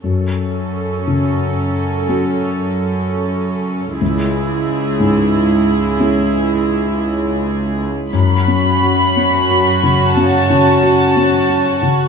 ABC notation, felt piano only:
X:1
M:4/4
L:1/8
Q:1/4=60
K:F#m
V:1 name="Felt piano"
F,,2 C,2 [CFA]4 | C,,2 G,,2 [CEG]4 | (3F,, C F (3C F C, (3C C, F (3C F C, |]